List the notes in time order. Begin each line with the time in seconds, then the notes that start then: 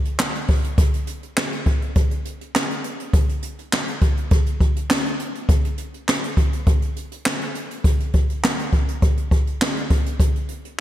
0.05 closed hi-hat
0.20 snare, clap
0.34 closed hi-hat
0.48 kick, open hi-hat
0.64 closed hi-hat
0.78 kick, closed hi-hat
0.94 closed hi-hat
1.07 closed hi-hat
1.23 closed hi-hat
1.37 snare, clap
1.52 closed hi-hat
1.66 kick, closed hi-hat
1.82 closed hi-hat
1.95 kick, closed hi-hat
2.11 closed hi-hat
2.25 closed hi-hat
2.41 closed hi-hat
2.56 snare, clap
2.70 closed hi-hat
2.84 closed hi-hat
3.00 closed hi-hat
3.13 kick, closed hi-hat
3.29 closed hi-hat
3.42 closed hi-hat
3.59 closed hi-hat
3.73 snare, clap
3.88 closed hi-hat
4.01 kick, closed hi-hat
4.17 closed hi-hat
4.31 kick, closed hi-hat
4.46 closed hi-hat
4.61 kick, closed hi-hat
4.76 closed hi-hat
4.91 snare, clap
5.06 closed hi-hat
5.19 closed hi-hat
5.35 closed hi-hat
5.49 kick, closed hi-hat
5.65 closed hi-hat
5.78 closed hi-hat
5.94 closed hi-hat
6.09 snare, clap
6.24 closed hi-hat
6.37 kick, closed hi-hat
6.53 closed hi-hat
6.66 kick, closed hi-hat
6.82 closed hi-hat
6.96 closed hi-hat
7.12 closed hi-hat
7.26 snare, clap
7.41 closed hi-hat
7.55 closed hi-hat
7.71 closed hi-hat
7.84 kick, closed hi-hat
8.00 closed hi-hat
8.13 kick, closed hi-hat
8.30 closed hi-hat
8.44 snare, clap
8.59 closed hi-hat
8.73 kick, closed hi-hat
8.88 closed hi-hat
9.02 kick, closed hi-hat
9.17 closed hi-hat
9.31 kick, closed hi-hat
9.47 closed hi-hat
9.62 snare, clap
9.77 closed hi-hat
9.90 kick, closed hi-hat
10.06 closed hi-hat
10.20 kick, closed hi-hat
10.36 closed hi-hat
10.49 closed hi-hat
10.65 closed hi-hat